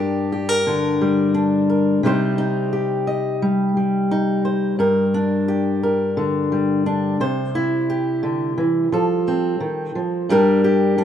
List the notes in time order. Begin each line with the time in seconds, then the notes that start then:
Already playing: G2 D4 A#4
0.00 G4
0.32 G4
0.49 A#4
0.67 D3
1.01 G3
1.34 D4
1.70 A#4
2.03 C3 G3 D#4 G4 C5
2.38 D#4
2.73 G4
3.07 D#5
3.42 G3
3.77 G3
4.11 D#4
4.45 C5
4.79 G2 A#4
5.14 D4
5.48 G4
5.83 A#4
6.17 D3
6.52 G3
6.86 D4
7.20 C3 C5
7.55 E4
7.90 G4
8.23 D3
8.58 E3
8.92 F3 A4
9.28 C4
9.60 D#3
9.95 F3
10.29 G2 G3 D4 G4 A#4
10.64 G4
10.98 G3 D4